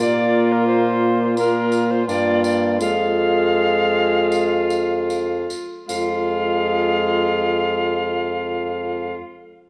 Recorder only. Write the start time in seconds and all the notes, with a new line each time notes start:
0.00 D5
0.52 A#4
0.67 C5
1.38 A#4
1.91 C5
2.08 D5
2.45 D5
2.81 F5
5.88 F5